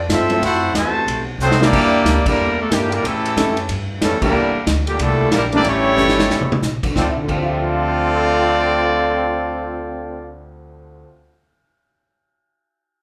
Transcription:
0.09 upright bass G2, trombone section A3 C4 F4, trumpet section F4 A4 E5, kick, snare, hi-hat pedal, ride
0.13 trumpet section C4
0.30 grand piano F#3 A3 C4 E4 A4, ride
0.41 upright bass F#2, trombone section A3 C4 F#4, trumpet section E4 A4 C5 F#5, kick, ride
0.74 upright bass E2, trombone section C3 E3 A3, trumpet section F#4 C5 E5 A5, kick, snare, hi-hat pedal, ride
1.07 upright bass B1, kick, ride
1.38 upright bass C2, trombone section F#3 A3 C4, trumpet section A3 D#4 F#4 C5, hi-hat pedal
1.51 snare
1.60 grand piano G3 A#3 D4 E4 A#4, trombone section G3 A#3 D4, trumpet section A#3 E4 G4 D5, snare
1.73 upright bass E2, kick, crash
2.05 upright bass D2, kick, snare, hi-hat pedal, ride
2.25 trombone section D3 G3 A#3, trumpet section G3 D4 E4 A#4, muted upright bass stroke, kick, crash
2.38 upright bass E2
2.60 trombone section A3, trumpet section A#3 D4 A4
2.71 upright bass G2, trombone section A#2 D3 G3, grand piano G3 A#3 D4 E4 A#4, trumpet section A#3 D4 G4, kick, snare, hi-hat pedal, ride
2.91 trombone section D3 G3 A#3, trumpet section G3 D4 E4 A#4, ride
3.03 upright bass A2, trombone section C#3 E3 A3, trumpet section C#4 E4 G4 A4, kick, ride
3.25 ride
3.36 upright bass F#2, grand piano G3 A3 C#4 E4 A4, kick, snare, hi-hat pedal, ride
3.57 ride
3.69 upright bass G2, kick, ride
4.01 upright bass F2, trombone section C#3 E3 A3, trumpet section G3 C#4 E4 A4, kick, snare, hi-hat pedal, ride
4.12 upright bass E2
4.20 upright bass C#2, trombone section D3 G3 A#3, grand piano E3 G3 A#3 D4 G4, trumpet section G3 D4 E4 A#4, kick, crash
4.33 upright bass E2
4.54 muted upright bass stroke
4.66 upright bass D2, kick, snare, hi-hat pedal, ride
4.86 trombone section A#2 D3 G3, trumpet section A#3 D4 G4, ride
4.99 upright bass C2, trombone section A#2 D3 A3, trumpet section G3 D4 E4 A4, kick, ride
5.31 upright bass A#1, trombone section D3 G3 A#3, kick, snare, hi-hat pedal, ride
5.36 trumpet section G3 D4 E4 A#4
5.52 grand piano E3 G3 A3 C#4 G4, trombone section G3 A#3 D4, trumpet section A#3 E4 G4 D5, ride
5.64 upright bass A1, trombone section E3 G3 C#4, trumpet section A3 E4 G4 C#5, kick, ride
5.97 upright bass G1, grand piano E3 G3 A3 C#4 G4, hi-hat pedal
6.09 snare
6.19 snare
6.30 upright bass A1, snare
6.41 mid tom
6.52 mid tom
6.62 upright bass A#1, snare, hi-hat pedal
6.83 grand piano D2, muted upright bass stroke, kick, crash
6.91 grand piano D3
6.96 upright bass D2, trombone section D3 A3 C4 F4, grand piano F3, trumpet section C4 F4 A4 D5, kick, snare
7.03 grand piano C4
7.09 grand piano E4
7.16 grand piano D2
7.23 grand piano D3
7.28 upright bass D2, trombone section D3 A3 C4 F4, grand piano F3 G4, trumpet section C4 F4 A4 D5, kick, crash
7.35 grand piano C4 C5
7.42 grand piano F4 E5
7.54 grand piano G5
7.64 grand piano C6
7.74 grand piano E6
7.85 grand piano G6

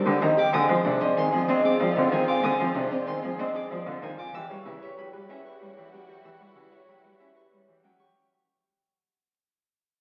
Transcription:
Already playing: bassoon D#2, string section D4 G4, vibraphone C5
0.05 cello D3, french horn D4, grand piano G4
0.21 cello D#3, grand piano C4, french horn D4, vibraphone D#5, violin A#5
0.37 grand piano G4, vibraphone G5, violin D6
0.53 bassoon G#2, cello D3, string section C4 F4, french horn C4, vibraphone G#5, violin D#6
0.69 cello F3, french horn C4, grand piano C5
0.85 cello C3, french horn C4, grand piano D4, vibraphone C5
1.01 french horn C4, grand piano C5, vibraphone D5, violin D#5
1.17 cello D#3, french horn C4, vibraphone G#5, violin C6
1.32 cello F3, french horn C4, grand piano G#4
1.48 cello C4, french horn C4, grand piano D4, vibraphone D#5, violin D#5
1.64 french horn C4, grand piano G#4, vibraphone G#4, violin D6
1.80 cello F3, french horn C4, vibraphone D5
1.96 cello D3, french horn C4, grand piano F4
2.12 cello D#3, grand piano C4, french horn C4, vibraphone F5, violin G#5
2.28 french horn C4, grand piano F4, vibraphone G#5, violin D6
2.43 cello D3, french horn C4, vibraphone G#5, violin D#6
2.59 cello F3, french horn C4, grand piano C5
2.75 cello C3, french horn C4, grand piano D4, vibraphone C5
2.91 french horn C4, grand piano C5, vibraphone D5, violin D#5
3.07 cello D#3, french horn C4, vibraphone G#5, violin C6
3.23 cello F3, french horn C4, grand piano G#4
3.39 french horn C4, cello C4, grand piano D4, violin D#5, vibraphone D#5
3.55 french horn C4, grand piano G#4, vibraphone G#4, violin D6
3.70 cello F3, french horn C4, vibraphone D5
3.86 cello D3, french horn C4, grand piano F4
4.02 cello D#3, grand piano C4, french horn C4, violin G#5
4.18 grand piano F4, vibraphone G#5, violin D6
4.34 bassoon E2, cello E3, string section E4 F#4, french horn G4, vibraphone G5, violin E6
4.50 cello G3, french horn G4, grand piano C#5
4.65 cello C#3, grand piano E4, french horn G4, vibraphone B4
4.81 french horn G4, grand piano C#5, vibraphone C#5, violin E5
4.97 cello F#3, french horn G4, vibraphone G5, violin B5
5.13 cello G3, french horn G4, grand piano B4
5.29 cello C#4, grand piano E4, french horn G4, vibraphone E5, violin E5
5.45 french horn G4, vibraphone G4, grand piano B4, violin C#6
5.60 cello G3, french horn G4, vibraphone C#5
5.77 cello E3, grand piano G4, french horn G4
5.92 cello F#3, grand piano C#4, french horn G4, vibraphone F#5, violin G5
6.08 grand piano G4, french horn G4, vibraphone G5, violin C#6
6.24 cello E3, french horn G4, vibraphone G5, violin E6
6.40 cello G3, french horn G4, grand piano C#5
6.55 cello C#3, grand piano E4, french horn G4, vibraphone B4
6.72 french horn G4, grand piano C#5, vibraphone C#5, violin E5
6.88 cello F#3, french horn G4, vibraphone G5, violin B5
7.04 cello G3, french horn G4, grand piano B4
7.20 cello C#4, grand piano E4, french horn G4, violin E5, vibraphone E5
7.35 vibraphone G4, french horn G4, grand piano B4, violin C#6
7.52 cello G3, french horn G4, vibraphone C#5
7.68 cello E3, grand piano G4, french horn G4
7.83 cello F#3, grand piano C#4, french horn G4, vibraphone F#5, violin G5
7.99 grand piano G4, vibraphone G5, violin C#6

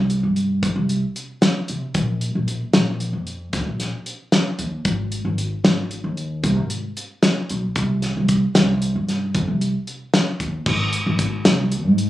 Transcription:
Already playing: upright bass C2
0.10 closed hi-hat
0.23 upright bass G2
0.36 closed hi-hat
0.63 upright bass F2, kick, closed hi-hat
0.76 upright bass C2
0.89 closed hi-hat
1.16 closed hi-hat
1.42 snare, closed hi-hat
1.68 upright bass C3, closed hi-hat
1.94 upright bass A#1, kick, closed hi-hat
2.21 closed hi-hat
2.35 upright bass A#1
2.48 closed hi-hat
2.73 upright bass A#1, snare, closed hi-hat
3.00 closed hi-hat
3.13 upright bass F2
3.27 closed hi-hat
3.53 upright bass D2, kick, snare, closed hi-hat
3.66 upright bass A#1
3.80 snare, closed hi-hat
4.06 closed hi-hat
4.32 snare, closed hi-hat
4.59 upright bass D#2, closed hi-hat
4.85 upright bass G#1, kick, closed hi-hat
5.12 closed hi-hat
5.25 upright bass G#1
5.38 closed hi-hat
5.64 upright bass G#1, snare, closed hi-hat
5.91 closed hi-hat
6.04 upright bass D#2
6.17 closed hi-hat
6.43 upright bass C2, kick, closed hi-hat
6.57 upright bass G#1
6.70 closed hi-hat
6.97 closed hi-hat
7.23 snare, closed hi-hat
7.49 upright bass B1, closed hi-hat
7.76 upright bass C2, kick, closed hi-hat
8.02 snare, closed hi-hat
8.17 upright bass C2
8.28 kick, closed hi-hat
8.55 upright bass C2, snare, closed hi-hat
8.82 closed hi-hat
8.95 upright bass G2
9.09 snare, closed hi-hat
9.35 upright bass F2, kick, closed hi-hat
9.48 upright bass C2
9.61 closed hi-hat
9.87 closed hi-hat
10.14 snare, closed hi-hat
10.40 upright bass D#2, kick, closed hi-hat
10.66 upright bass G#1, kick, crash
10.93 closed hi-hat
11.06 upright bass G#1
11.19 kick, closed hi-hat
11.45 upright bass C2, snare, closed hi-hat
11.72 closed hi-hat
11.86 upright bass G#2
11.98 closed hi-hat

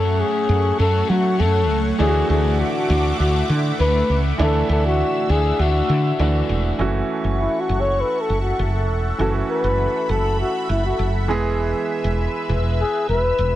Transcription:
Already playing: fretless electric bass F#2, overdriven electric guitar F#3 C#4 F#4, grand piano F#3 A3 C#4 F#4, analog synth pad A3 C#5 F#5 C#6, flugelhorn A4
0.20 flugelhorn G#4
0.49 fretless electric bass F#2
0.79 fretless electric bass F#2, overdriven electric guitar F#3 C#4 F#4, flugelhorn A4
1.09 fretless electric bass F#3, flugelhorn F#4
1.39 fretless electric bass F#2, overdriven electric guitar F#3 C#4 F#4, flugelhorn A4
1.69 fretless electric bass C#2
1.99 fretless electric bass D2, overdriven electric guitar D3 A3 D4, grand piano E3 A3 D4 E4, flugelhorn G#4, analog synth pad E5 D6
2.07 grand piano F#4
2.30 fretless electric bass D2, flugelhorn G#4
2.60 flugelhorn F#4
2.89 fretless electric bass D2, overdriven electric guitar A3 D4
3.19 fretless electric bass D2, overdriven electric guitar D3 A3 D4, flugelhorn F#4
3.49 fretless electric bass D3
3.80 fretless electric bass D2, overdriven electric guitar A3 D4, flugelhorn B4
4.10 fretless electric bass C#2
4.38 fretless electric bass D2, overdriven electric guitar D3 A3 D4, grand piano E3 A3 D4 E4, flugelhorn A4, analog synth pad E6
4.69 fretless electric bass D2, flugelhorn A4
4.86 flugelhorn F#4
5.29 fretless electric bass D2, overdriven electric guitar A3 D4, flugelhorn G#4
5.59 fretless electric bass D2, overdriven electric guitar D3 A3 D4, flugelhorn F#4
5.89 fretless electric bass D3
6.19 fretless electric bass D2, overdriven electric guitar D3 A3 D4, grand piano E3 A3 D4 F#4
6.49 fretless electric bass E1
6.79 fretless electric bass F#1, grand piano E3 A3 C#4 F#4, analog synth pad A4 E5 F#5 C#6
7.24 fretless electric bass F#1
7.40 flugelhorn E4
7.60 flugelhorn F#4
7.69 fretless electric bass F#1
7.80 flugelhorn C#5
8.01 flugelhorn B4
8.21 flugelhorn A4
8.30 fretless electric bass F#1
8.41 flugelhorn F#4
8.59 fretless electric bass F#1
8.89 fretless electric bass E1
9.18 fretless electric bass F#1, grand piano E3 A3 C#4 F#4, flugelhorn A4, analog synth pad B5
9.50 flugelhorn B4
9.64 fretless electric bass F#1
10.09 fretless electric bass F#1, flugelhorn A4
10.40 flugelhorn F#4
10.69 fretless electric bass F#1, flugelhorn E4
10.85 flugelhorn F#4
10.99 fretless electric bass F#1
11.28 fretless electric bass E1, grand piano E3 G#3 B3 G#4, analog synth pad B4 E6
12.04 fretless electric bass E1
12.49 fretless electric bass E1
12.80 flugelhorn G#4
13.09 fretless electric bass E1, flugelhorn B4
13.38 fretless electric bass E1

